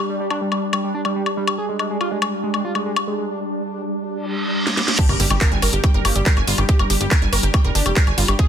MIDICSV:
0, 0, Header, 1, 8, 480
1, 0, Start_track
1, 0, Tempo, 425532
1, 1783, Time_signature, 4, 2, 24, 8
1, 9569, End_track
2, 0, Start_track
2, 0, Title_t, "Synth arpeggio sound"
2, 0, Program_c, 0, 84
2, 5624, Note_on_c, 0, 67, 82
2, 5671, Note_off_c, 0, 67, 0
2, 5744, Note_on_c, 0, 70, 78
2, 5814, Note_off_c, 0, 70, 0
2, 5864, Note_on_c, 0, 67, 77
2, 5910, Note_off_c, 0, 67, 0
2, 5984, Note_on_c, 0, 67, 78
2, 6012, Note_off_c, 0, 67, 0
2, 6104, Note_on_c, 0, 70, 105
2, 6150, Note_off_c, 0, 70, 0
2, 6224, Note_on_c, 0, 80, 73
2, 6294, Note_off_c, 0, 80, 0
2, 6344, Note_on_c, 0, 70, 109
2, 6414, Note_off_c, 0, 70, 0
2, 6464, Note_on_c, 0, 67, 81
2, 6511, Note_off_c, 0, 67, 0
2, 6584, Note_on_c, 0, 79, 87
2, 6630, Note_off_c, 0, 79, 0
2, 6704, Note_on_c, 0, 70, 82
2, 6774, Note_off_c, 0, 70, 0
2, 6824, Note_on_c, 0, 67, 78
2, 6871, Note_off_c, 0, 67, 0
2, 6944, Note_on_c, 0, 67, 78
2, 6972, Note_off_c, 0, 67, 0
2, 7064, Note_on_c, 0, 70, 103
2, 7110, Note_off_c, 0, 70, 0
2, 7184, Note_on_c, 0, 80, 82
2, 7254, Note_off_c, 0, 80, 0
2, 7304, Note_on_c, 0, 65, 98
2, 7350, Note_off_c, 0, 65, 0
2, 7424, Note_on_c, 0, 67, 73
2, 7471, Note_off_c, 0, 67, 0
2, 7544, Note_on_c, 0, 67, 85
2, 7591, Note_off_c, 0, 67, 0
2, 7664, Note_on_c, 0, 70, 78
2, 7734, Note_off_c, 0, 70, 0
2, 7784, Note_on_c, 0, 67, 80
2, 7830, Note_off_c, 0, 67, 0
2, 7904, Note_on_c, 0, 67, 76
2, 7932, Note_off_c, 0, 67, 0
2, 8024, Note_on_c, 0, 70, 109
2, 8070, Note_off_c, 0, 70, 0
2, 8144, Note_on_c, 0, 80, 75
2, 8214, Note_off_c, 0, 80, 0
2, 8264, Note_on_c, 0, 70, 105
2, 8334, Note_off_c, 0, 70, 0
2, 8384, Note_on_c, 0, 67, 83
2, 8431, Note_off_c, 0, 67, 0
2, 8504, Note_on_c, 0, 79, 88
2, 8551, Note_off_c, 0, 79, 0
2, 8624, Note_on_c, 0, 70, 77
2, 8694, Note_off_c, 0, 70, 0
2, 8744, Note_on_c, 0, 67, 79
2, 8791, Note_off_c, 0, 67, 0
2, 8864, Note_on_c, 0, 67, 78
2, 8892, Note_off_c, 0, 67, 0
2, 8984, Note_on_c, 0, 70, 98
2, 9031, Note_off_c, 0, 70, 0
2, 9104, Note_on_c, 0, 80, 79
2, 9174, Note_off_c, 0, 80, 0
2, 9224, Note_on_c, 0, 65, 106
2, 9271, Note_off_c, 0, 65, 0
2, 9344, Note_on_c, 0, 67, 77
2, 9391, Note_off_c, 0, 67, 0
2, 9464, Note_on_c, 0, 68, 79
2, 9511, Note_off_c, 0, 68, 0
2, 9569, End_track
3, 0, Start_track
3, 0, Title_t, "Synth texture"
3, 0, Program_c, 1, 99
3, 0, Note_on_c, 1, 55, 79
3, 0, Note_on_c, 1, 62, 80
3, 5610, Note_off_c, 1, 55, 0
3, 5610, Note_off_c, 1, 62, 0
3, 5624, Note_on_c, 1, 55, 85
3, 5624, Note_on_c, 1, 62, 82
3, 9569, Note_off_c, 1, 55, 0
3, 9569, Note_off_c, 1, 62, 0
3, 9569, End_track
4, 0, Start_track
4, 0, Title_t, "Analog synth lead"
4, 0, Program_c, 2, 81
4, 104, Note_on_c, 2, 55, 63
4, 179, Note_off_c, 2, 55, 0
4, 224, Note_on_c, 2, 55, 64
4, 299, Note_off_c, 2, 55, 0
4, 344, Note_on_c, 2, 62, 95
4, 419, Note_off_c, 2, 62, 0
4, 464, Note_on_c, 2, 55, 64
4, 539, Note_off_c, 2, 55, 0
4, 584, Note_on_c, 2, 55, 62
4, 659, Note_off_c, 2, 55, 0
4, 824, Note_on_c, 2, 55, 65
4, 899, Note_off_c, 2, 55, 0
4, 945, Note_on_c, 2, 55, 62
4, 1020, Note_off_c, 2, 55, 0
4, 1064, Note_on_c, 2, 62, 91
4, 1139, Note_off_c, 2, 62, 0
4, 1185, Note_on_c, 2, 55, 62
4, 1260, Note_off_c, 2, 55, 0
4, 1305, Note_on_c, 2, 55, 67
4, 1379, Note_off_c, 2, 55, 0
4, 1544, Note_on_c, 2, 55, 67
4, 1619, Note_off_c, 2, 55, 0
4, 1664, Note_on_c, 2, 55, 62
4, 1739, Note_off_c, 2, 55, 0
4, 1784, Note_on_c, 2, 68, 96
4, 1859, Note_off_c, 2, 68, 0
4, 1905, Note_on_c, 2, 56, 60
4, 1979, Note_off_c, 2, 56, 0
4, 2024, Note_on_c, 2, 56, 61
4, 2099, Note_off_c, 2, 56, 0
4, 2144, Note_on_c, 2, 56, 66
4, 2219, Note_off_c, 2, 56, 0
4, 2264, Note_on_c, 2, 65, 93
4, 2339, Note_off_c, 2, 65, 0
4, 2385, Note_on_c, 2, 56, 63
4, 2459, Note_off_c, 2, 56, 0
4, 2504, Note_on_c, 2, 56, 65
4, 2579, Note_off_c, 2, 56, 0
4, 2744, Note_on_c, 2, 56, 65
4, 2819, Note_off_c, 2, 56, 0
4, 2864, Note_on_c, 2, 56, 63
4, 2939, Note_off_c, 2, 56, 0
4, 2984, Note_on_c, 2, 65, 88
4, 3059, Note_off_c, 2, 65, 0
4, 3104, Note_on_c, 2, 56, 61
4, 3179, Note_off_c, 2, 56, 0
4, 3224, Note_on_c, 2, 56, 65
4, 3299, Note_off_c, 2, 56, 0
4, 3465, Note_on_c, 2, 56, 68
4, 3539, Note_off_c, 2, 56, 0
4, 3584, Note_on_c, 2, 56, 65
4, 3659, Note_off_c, 2, 56, 0
4, 5624, Note_on_c, 2, 62, 100
4, 5699, Note_off_c, 2, 62, 0
4, 5745, Note_on_c, 2, 55, 61
4, 5819, Note_off_c, 2, 55, 0
4, 5864, Note_on_c, 2, 55, 63
4, 5939, Note_off_c, 2, 55, 0
4, 5984, Note_on_c, 2, 55, 64
4, 6059, Note_off_c, 2, 55, 0
4, 6104, Note_on_c, 2, 58, 99
4, 6179, Note_off_c, 2, 58, 0
4, 6224, Note_on_c, 2, 55, 66
4, 6299, Note_off_c, 2, 55, 0
4, 6344, Note_on_c, 2, 55, 63
4, 6419, Note_off_c, 2, 55, 0
4, 6584, Note_on_c, 2, 55, 67
4, 6659, Note_off_c, 2, 55, 0
4, 6704, Note_on_c, 2, 55, 64
4, 6779, Note_off_c, 2, 55, 0
4, 6824, Note_on_c, 2, 58, 94
4, 6899, Note_off_c, 2, 58, 0
4, 6944, Note_on_c, 2, 55, 67
4, 7019, Note_off_c, 2, 55, 0
4, 7064, Note_on_c, 2, 55, 68
4, 7139, Note_off_c, 2, 55, 0
4, 7304, Note_on_c, 2, 55, 65
4, 7379, Note_off_c, 2, 55, 0
4, 7424, Note_on_c, 2, 55, 69
4, 7499, Note_off_c, 2, 55, 0
4, 7543, Note_on_c, 2, 67, 102
4, 7619, Note_off_c, 2, 67, 0
4, 7663, Note_on_c, 2, 55, 63
4, 7739, Note_off_c, 2, 55, 0
4, 7783, Note_on_c, 2, 55, 64
4, 7859, Note_off_c, 2, 55, 0
4, 7904, Note_on_c, 2, 55, 69
4, 7979, Note_off_c, 2, 55, 0
4, 8024, Note_on_c, 2, 62, 98
4, 8099, Note_off_c, 2, 62, 0
4, 8144, Note_on_c, 2, 55, 63
4, 8219, Note_off_c, 2, 55, 0
4, 8264, Note_on_c, 2, 55, 64
4, 8339, Note_off_c, 2, 55, 0
4, 8504, Note_on_c, 2, 55, 70
4, 8579, Note_off_c, 2, 55, 0
4, 8624, Note_on_c, 2, 55, 67
4, 8699, Note_off_c, 2, 55, 0
4, 8744, Note_on_c, 2, 62, 92
4, 8819, Note_off_c, 2, 62, 0
4, 8865, Note_on_c, 2, 55, 62
4, 8940, Note_off_c, 2, 55, 0
4, 8985, Note_on_c, 2, 55, 65
4, 9060, Note_off_c, 2, 55, 0
4, 9224, Note_on_c, 2, 55, 68
4, 9299, Note_off_c, 2, 55, 0
4, 9344, Note_on_c, 2, 55, 67
4, 9419, Note_off_c, 2, 55, 0
4, 9464, Note_on_c, 2, 68, 97
4, 9539, Note_off_c, 2, 68, 0
4, 9569, End_track
5, 0, Start_track
5, 0, Title_t, "Analog synth bass"
5, 0, Program_c, 3, 38
5, 5744, Note_on_c, 3, 31, 89
5, 5817, Note_off_c, 3, 31, 0
5, 5864, Note_on_c, 3, 31, 98
5, 5937, Note_off_c, 3, 31, 0
5, 5984, Note_on_c, 3, 31, 96
5, 6057, Note_off_c, 3, 31, 0
5, 6224, Note_on_c, 3, 31, 86
5, 6297, Note_off_c, 3, 31, 0
5, 6344, Note_on_c, 3, 31, 92
5, 6417, Note_off_c, 3, 31, 0
5, 6464, Note_on_c, 3, 31, 91
5, 6537, Note_off_c, 3, 31, 0
5, 6704, Note_on_c, 3, 31, 88
5, 6777, Note_off_c, 3, 31, 0
5, 6824, Note_on_c, 3, 31, 97
5, 6897, Note_off_c, 3, 31, 0
5, 6944, Note_on_c, 3, 31, 89
5, 7017, Note_off_c, 3, 31, 0
5, 7184, Note_on_c, 3, 31, 89
5, 7257, Note_off_c, 3, 31, 0
5, 7304, Note_on_c, 3, 31, 101
5, 7377, Note_off_c, 3, 31, 0
5, 7424, Note_on_c, 3, 31, 92
5, 7497, Note_off_c, 3, 31, 0
5, 7664, Note_on_c, 3, 31, 88
5, 7737, Note_off_c, 3, 31, 0
5, 7784, Note_on_c, 3, 31, 94
5, 7857, Note_off_c, 3, 31, 0
5, 7903, Note_on_c, 3, 31, 96
5, 7977, Note_off_c, 3, 31, 0
5, 8143, Note_on_c, 3, 31, 84
5, 8217, Note_off_c, 3, 31, 0
5, 8264, Note_on_c, 3, 31, 97
5, 8337, Note_off_c, 3, 31, 0
5, 8384, Note_on_c, 3, 31, 91
5, 8457, Note_off_c, 3, 31, 0
5, 8623, Note_on_c, 3, 29, 88
5, 8697, Note_off_c, 3, 29, 0
5, 8743, Note_on_c, 3, 31, 98
5, 8817, Note_off_c, 3, 31, 0
5, 8864, Note_on_c, 3, 29, 90
5, 8937, Note_off_c, 3, 29, 0
5, 9104, Note_on_c, 3, 31, 88
5, 9177, Note_off_c, 3, 31, 0
5, 9224, Note_on_c, 3, 31, 104
5, 9297, Note_off_c, 3, 31, 0
5, 9344, Note_on_c, 3, 31, 95
5, 9417, Note_off_c, 3, 31, 0
5, 9569, End_track
6, 0, Start_track
6, 0, Title_t, "Impact"
6, 0, Program_c, 4, 103
6, 5624, Note_on_c, 4, 60, 80
6, 7544, Note_off_c, 4, 60, 0
6, 9569, End_track
7, 0, Start_track
7, 0, Title_t, "Reverse cymbal"
7, 0, Program_c, 5, 119
7, 4664, Note_on_c, 5, 60, 73
7, 5624, Note_off_c, 5, 60, 0
7, 9569, End_track
8, 0, Start_track
8, 0, Title_t, "Drums"
8, 344, Note_on_c, 9, 76, 39
8, 457, Note_off_c, 9, 76, 0
8, 584, Note_on_c, 9, 76, 42
8, 696, Note_off_c, 9, 76, 0
8, 824, Note_on_c, 9, 76, 81
8, 936, Note_off_c, 9, 76, 0
8, 1184, Note_on_c, 9, 76, 41
8, 1297, Note_off_c, 9, 76, 0
8, 1424, Note_on_c, 9, 76, 43
8, 1536, Note_off_c, 9, 76, 0
8, 1664, Note_on_c, 9, 76, 81
8, 1776, Note_off_c, 9, 76, 0
8, 2024, Note_on_c, 9, 76, 41
8, 2136, Note_off_c, 9, 76, 0
8, 2264, Note_on_c, 9, 76, 39
8, 2376, Note_off_c, 9, 76, 0
8, 2503, Note_on_c, 9, 76, 81
8, 2616, Note_off_c, 9, 76, 0
8, 2864, Note_on_c, 9, 76, 41
8, 2976, Note_off_c, 9, 76, 0
8, 3104, Note_on_c, 9, 76, 42
8, 3216, Note_off_c, 9, 76, 0
8, 3344, Note_on_c, 9, 76, 82
8, 3457, Note_off_c, 9, 76, 0
8, 5264, Note_on_c, 9, 38, 51
8, 5377, Note_off_c, 9, 38, 0
8, 5384, Note_on_c, 9, 38, 71
8, 5497, Note_off_c, 9, 38, 0
8, 5504, Note_on_c, 9, 38, 80
8, 5617, Note_off_c, 9, 38, 0
8, 5624, Note_on_c, 9, 36, 118
8, 5624, Note_on_c, 9, 42, 54
8, 5624, Note_on_c, 9, 49, 105
8, 5737, Note_off_c, 9, 36, 0
8, 5737, Note_off_c, 9, 42, 0
8, 5737, Note_off_c, 9, 49, 0
8, 5744, Note_on_c, 9, 42, 28
8, 5744, Note_on_c, 9, 76, 40
8, 5857, Note_off_c, 9, 42, 0
8, 5857, Note_off_c, 9, 76, 0
8, 5864, Note_on_c, 9, 46, 110
8, 5977, Note_off_c, 9, 46, 0
8, 5984, Note_on_c, 9, 42, 60
8, 5984, Note_on_c, 9, 76, 79
8, 6097, Note_off_c, 9, 42, 0
8, 6097, Note_off_c, 9, 76, 0
8, 6104, Note_on_c, 9, 36, 126
8, 6104, Note_on_c, 9, 39, 127
8, 6104, Note_on_c, 9, 42, 57
8, 6216, Note_off_c, 9, 39, 0
8, 6216, Note_off_c, 9, 42, 0
8, 6217, Note_off_c, 9, 36, 0
8, 6224, Note_on_c, 9, 42, 29
8, 6337, Note_off_c, 9, 42, 0
8, 6344, Note_on_c, 9, 46, 107
8, 6344, Note_on_c, 9, 76, 38
8, 6456, Note_off_c, 9, 46, 0
8, 6456, Note_off_c, 9, 76, 0
8, 6464, Note_on_c, 9, 42, 58
8, 6576, Note_off_c, 9, 42, 0
8, 6584, Note_on_c, 9, 36, 124
8, 6584, Note_on_c, 9, 42, 59
8, 6584, Note_on_c, 9, 76, 39
8, 6696, Note_off_c, 9, 42, 0
8, 6696, Note_off_c, 9, 76, 0
8, 6697, Note_off_c, 9, 36, 0
8, 6704, Note_on_c, 9, 42, 27
8, 6817, Note_off_c, 9, 42, 0
8, 6823, Note_on_c, 9, 46, 99
8, 6823, Note_on_c, 9, 76, 75
8, 6936, Note_off_c, 9, 46, 0
8, 6936, Note_off_c, 9, 76, 0
8, 6944, Note_on_c, 9, 42, 57
8, 7057, Note_off_c, 9, 42, 0
8, 7064, Note_on_c, 9, 36, 125
8, 7064, Note_on_c, 9, 39, 126
8, 7064, Note_on_c, 9, 42, 58
8, 7177, Note_off_c, 9, 36, 0
8, 7177, Note_off_c, 9, 39, 0
8, 7177, Note_off_c, 9, 42, 0
8, 7184, Note_on_c, 9, 42, 29
8, 7184, Note_on_c, 9, 76, 40
8, 7296, Note_off_c, 9, 42, 0
8, 7296, Note_off_c, 9, 76, 0
8, 7303, Note_on_c, 9, 46, 104
8, 7416, Note_off_c, 9, 46, 0
8, 7424, Note_on_c, 9, 42, 54
8, 7424, Note_on_c, 9, 76, 40
8, 7537, Note_off_c, 9, 42, 0
8, 7537, Note_off_c, 9, 76, 0
8, 7543, Note_on_c, 9, 42, 54
8, 7544, Note_on_c, 9, 36, 127
8, 7656, Note_off_c, 9, 42, 0
8, 7657, Note_off_c, 9, 36, 0
8, 7664, Note_on_c, 9, 42, 27
8, 7664, Note_on_c, 9, 76, 75
8, 7777, Note_off_c, 9, 42, 0
8, 7777, Note_off_c, 9, 76, 0
8, 7784, Note_on_c, 9, 46, 115
8, 7896, Note_off_c, 9, 46, 0
8, 7904, Note_on_c, 9, 42, 55
8, 8017, Note_off_c, 9, 42, 0
8, 8024, Note_on_c, 9, 36, 126
8, 8024, Note_on_c, 9, 39, 127
8, 8024, Note_on_c, 9, 42, 54
8, 8024, Note_on_c, 9, 76, 38
8, 8136, Note_off_c, 9, 39, 0
8, 8136, Note_off_c, 9, 42, 0
8, 8136, Note_off_c, 9, 76, 0
8, 8137, Note_off_c, 9, 36, 0
8, 8144, Note_on_c, 9, 42, 28
8, 8257, Note_off_c, 9, 42, 0
8, 8264, Note_on_c, 9, 46, 106
8, 8264, Note_on_c, 9, 76, 38
8, 8377, Note_off_c, 9, 46, 0
8, 8377, Note_off_c, 9, 76, 0
8, 8384, Note_on_c, 9, 42, 59
8, 8497, Note_off_c, 9, 42, 0
8, 8504, Note_on_c, 9, 36, 127
8, 8504, Note_on_c, 9, 42, 56
8, 8504, Note_on_c, 9, 76, 80
8, 8617, Note_off_c, 9, 36, 0
8, 8617, Note_off_c, 9, 42, 0
8, 8617, Note_off_c, 9, 76, 0
8, 8624, Note_on_c, 9, 42, 29
8, 8737, Note_off_c, 9, 42, 0
8, 8744, Note_on_c, 9, 46, 110
8, 8856, Note_off_c, 9, 46, 0
8, 8864, Note_on_c, 9, 42, 54
8, 8864, Note_on_c, 9, 76, 39
8, 8977, Note_off_c, 9, 42, 0
8, 8977, Note_off_c, 9, 76, 0
8, 8984, Note_on_c, 9, 36, 127
8, 8984, Note_on_c, 9, 39, 126
8, 8984, Note_on_c, 9, 42, 55
8, 9097, Note_off_c, 9, 36, 0
8, 9097, Note_off_c, 9, 39, 0
8, 9097, Note_off_c, 9, 42, 0
8, 9104, Note_on_c, 9, 42, 28
8, 9104, Note_on_c, 9, 76, 40
8, 9217, Note_off_c, 9, 42, 0
8, 9217, Note_off_c, 9, 76, 0
8, 9224, Note_on_c, 9, 46, 111
8, 9337, Note_off_c, 9, 46, 0
8, 9344, Note_on_c, 9, 42, 54
8, 9344, Note_on_c, 9, 76, 79
8, 9457, Note_off_c, 9, 42, 0
8, 9457, Note_off_c, 9, 76, 0
8, 9464, Note_on_c, 9, 36, 127
8, 9464, Note_on_c, 9, 42, 51
8, 9569, Note_off_c, 9, 36, 0
8, 9569, Note_off_c, 9, 42, 0
8, 9569, End_track
0, 0, End_of_file